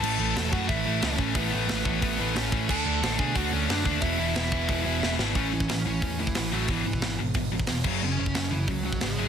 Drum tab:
CC |x---------------|----------------|x---------------|----------------|
HH |----o---o---o---|o---o---o---o---|----o---o---o---|o-------o-------|
SD |----o-------o---|----o-------o---|----o-------o---|----o-------o-o-|
BD |------o-o-----o-|o-----o-o-----o-|o-----o-o-----o-|o-----o-o-------|

CC |----------------|--------------x-|----------------|
HH |o---o---o---o---|o---o---o---o---|----o---o---o---|
SD |----o-------o---|----o-------o---|----o-------o---|
BD |o--o----o--o----|o--o----o--o--o-|---o----o--o----|